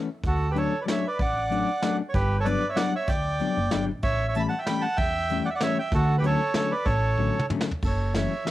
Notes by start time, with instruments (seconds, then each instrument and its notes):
0.23 upright bass D2, bandoneon F#4, kick, closed hi-hat
0.28 bandoneon A4
0.51 hollow-body jazz guitar F#3 A3, bandoneon G4 B4
0.55 hollow-body jazz guitar C#4 D4, bandoneon A4 C#5, closed hi-hat
0.81 bandoneon B4 D5
0.85 hollow-body jazz guitar F#3 A3 C#4 D4, snare, closed hi-hat
0.90 bandoneon C#5 E5
1.07 bandoneon B4 D5
1.19 upright bass A1, bandoneon D5 F#5, kick, closed hi-hat
1.50 hollow-body jazz guitar F#3 A3 C#4 D4, closed hi-hat
1.82 hollow-body jazz guitar F#3 A3 C#4 D4, snare, closed hi-hat
2.09 bandoneon C#5
2.14 upright bass G1, bandoneon G4 B4, kick, closed hi-hat
2.40 bandoneon A4 C#5
2.44 hollow-body jazz guitar F#3 G3 B3 D4, bandoneon B4 D5, closed hi-hat
2.69 bandoneon C#5 E5
2.76 hollow-body jazz guitar F#3 G3 B3 D4, bandoneon D5 F#5, snare, closed hi-hat
2.96 bandoneon C#5 E5
3.08 upright bass D2, bandoneon D5 G5, kick, closed hi-hat
3.40 hollow-body jazz guitar F#3 G3 B3 D4, closed hi-hat
3.57 upright bass F#1
3.71 upright bass G1, hollow-body jazz guitar F#3 G3 B3 D4, snare, closed hi-hat
3.91 upright bass A1
4.03 upright bass A1, bandoneon C#5 E5, kick, closed hi-hat
4.28 bandoneon C#5 E5
4.35 hollow-body jazz guitar E3 G3 A3 C#4, bandoneon E5 A5, closed hi-hat
4.40 bandoneon B5
4.48 bandoneon F#5 A5
4.59 bandoneon E5 G5
4.66 hollow-body jazz guitar E3 G3, bandoneon G5 B5, snare, closed hi-hat
4.71 hollow-body jazz guitar A3 C#4
4.81 bandoneon F#5 A5
4.97 upright bass E2, bandoneon E5 G5, kick, closed hi-hat
5.30 hollow-body jazz guitar E3 G3 A3 C#4, closed hi-hat
5.45 bandoneon D5 F#5
5.50 bandoneon E5
5.55 bandoneon D5 F#5
5.61 hollow-body jazz guitar E3 G3 A3 C#4, bandoneon C#5 E5, snare, closed hi-hat
5.79 bandoneon E5 G5
5.92 upright bass D2, bandoneon F#4 A4, kick, closed hi-hat
6.18 hollow-body jazz guitar D3, bandoneon G4 B4
6.22 hollow-body jazz guitar F#3 A3 C#4, bandoneon C#5, closed hi-hat
6.27 bandoneon A4
6.54 hollow-body jazz guitar D3 F#3 A3 C#4, bandoneon A4 C#5, snare, closed hi-hat
6.71 bandoneon B4 D5
6.85 upright bass A1, bandoneon A4 C#5, kick, closed hi-hat
7.18 hollow-body jazz guitar D3 F#3 A3 C#4, kick
7.39 mid tom
7.50 hollow-body jazz guitar D3 F#3 A3 C#4, mid tom
7.61 snare
7.71 floor tom
7.82 upright bass F#1, bandoneon A4, kick, ride
7.87 bandoneon C#5
8.14 hollow-body jazz guitar E3 F#3 A3 C#4, bandoneon C#5 E5, snare, ride
8.45 hollow-body jazz guitar E3 F#3 A3 C#4, snare, ride